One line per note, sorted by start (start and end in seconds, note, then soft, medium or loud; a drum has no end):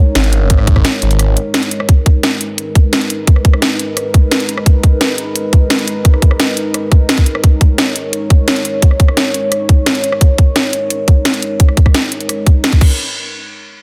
0.00 12.77 G#3 medium
0.00 12.77 D#4 medium
0.00 12.77 A#4 medium
0.00 1.86 C#5 loud
0.15 0.49 G#1 loud
0.15 snare loud
0.15 closed hi-hat loud
0.24 closed hi-hat soft
0.33 closed hi-hat medium
0.50 0.83 G#1 loud
0.50 kick loud
0.50 closed hi-hat loud
0.59 cross-stick soft
0.67 kick loud
0.67 closed hi-hat medium
0.76 kick medium
0.76 cross-stick medium
0.85 snare loud
0.85 closed hi-hat medium
1.02 1.35 G#1 medium
1.02 closed hi-hat medium
1.11 closed hi-hat soft
1.19 cross-stick soft
1.19 closed hi-hat loud
1.37 closed hi-hat medium
1.54 snare loud
1.54 closed hi-hat loud
1.63 closed hi-hat soft
1.71 closed hi-hat medium
1.80 cross-stick soft
1.89 7.41 B4 medium
1.89 kick loud
1.89 closed hi-hat loud
2.06 kick loud
2.06 closed hi-hat medium
2.23 snare loud
2.23 closed hi-hat loud
2.41 closed hi-hat medium
2.58 closed hi-hat loud
2.75 kick loud
2.75 closed hi-hat medium
2.93 snare loud
2.93 closed hi-hat loud
3.01 closed hi-hat soft
3.10 closed hi-hat medium
3.27 kick loud
3.27 closed hi-hat medium
3.36 cross-stick soft
3.45 kick loud
3.45 closed hi-hat medium
3.53 cross-stick medium
3.62 snare loud
3.62 closed hi-hat medium
3.79 closed hi-hat medium
3.97 cross-stick soft
3.97 closed hi-hat medium
4.14 kick loud
4.14 closed hi-hat medium
4.31 snare loud
4.31 closed hi-hat loud
4.40 closed hi-hat soft
4.49 closed hi-hat medium
4.57 cross-stick medium
4.66 kick loud
4.66 closed hi-hat medium
4.83 kick loud
4.83 closed hi-hat medium
5.01 snare loud
5.01 closed hi-hat medium
5.18 closed hi-hat medium
5.36 closed hi-hat medium
5.53 kick loud
5.53 closed hi-hat medium
5.70 snare loud
5.70 closed hi-hat medium
5.79 closed hi-hat soft
5.88 closed hi-hat medium
6.05 kick loud
6.05 closed hi-hat medium
6.14 cross-stick soft
6.22 kick loud
6.22 closed hi-hat medium
6.31 cross-stick medium
6.40 snare loud
6.40 closed hi-hat medium
6.57 closed hi-hat medium
6.74 cross-stick soft
6.74 closed hi-hat medium
6.92 kick loud
6.92 closed hi-hat medium
7.09 snare loud
7.09 closed hi-hat medium
7.18 kick medium
7.18 closed hi-hat soft
7.26 closed hi-hat medium
7.35 cross-stick soft
7.44 12.77 C#5 medium
7.44 kick loud
7.44 closed hi-hat medium
7.61 kick loud
7.61 closed hi-hat medium
7.78 snare loud
7.78 closed hi-hat medium
7.96 closed hi-hat medium
8.13 closed hi-hat medium
8.30 kick loud
8.30 closed hi-hat medium
8.48 snare loud
8.48 closed hi-hat medium
8.56 closed hi-hat soft
8.65 closed hi-hat medium
8.82 kick loud
8.82 closed hi-hat medium
8.91 cross-stick soft
9.00 kick loud
9.00 closed hi-hat medium
9.08 cross-stick medium
9.17 snare loud
9.17 closed hi-hat medium
9.34 closed hi-hat medium
9.52 cross-stick soft
9.52 closed hi-hat medium
9.69 kick loud
9.69 closed hi-hat medium
9.86 snare loud
9.86 closed hi-hat medium
9.95 closed hi-hat soft
10.04 closed hi-hat medium
10.12 cross-stick soft
10.21 kick loud
10.21 closed hi-hat loud
10.38 kick loud
10.38 closed hi-hat medium
10.56 snare loud
10.56 closed hi-hat loud
10.73 closed hi-hat medium
10.90 closed hi-hat medium
11.08 kick loud
11.08 closed hi-hat medium
11.25 snare loud
11.25 closed hi-hat loud
11.34 closed hi-hat soft
11.42 closed hi-hat medium
11.60 kick loud
11.60 closed hi-hat loud
11.68 cross-stick soft
11.77 kick loud
11.77 closed hi-hat medium
11.86 kick medium
11.86 cross-stick medium
11.94 snare loud
11.94 closed hi-hat medium
12.12 closed hi-hat medium
12.21 closed hi-hat soft
12.29 cross-stick soft
12.29 closed hi-hat loud
12.47 kick loud
12.47 closed hi-hat medium
12.64 snare loud
12.64 closed hi-hat loud
12.73 kick medium
12.73 closed hi-hat soft
12.81 kick loud
12.81 crash medium